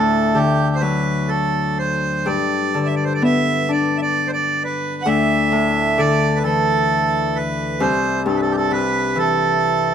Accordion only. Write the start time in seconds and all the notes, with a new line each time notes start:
Already playing: A4
0.35 G4
0.75 C5
0.81 B4
1.29 A4
1.79 C5
2.26 D5
2.86 E5
2.96 D5
3.05 C5
3.14 D5
3.25 E5
3.71 D5
3.97 E5
4.02 D5
4.28 C5
4.33 D5
4.64 B4
5.02 F#5
5.07 E5
5.99 D5
6.36 B4
6.44 A4
7.36 B4
7.81 C5
8.28 A4
8.37 B4
8.42 A4
8.52 G4
8.57 A4
8.72 B4
9.19 A4